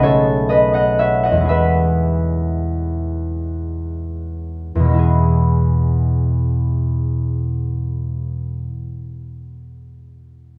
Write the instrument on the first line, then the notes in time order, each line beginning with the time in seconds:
harp
Already playing: B1 G#3 A3 C#4 D#4 B4 D#5
0.00 G#4 C#5
0.04 A4
0.49 B4 D#5
0.74 D#5 F#5
0.99 C#5 E5
1.23 D#5 F#5
1.32 E2
1.36 G#3
1.40 E4 G#4
1.49 B4 E5
4.75 E2
4.79 B2
4.85 G#3
4.89 B3
4.93 E4
4.98 G#4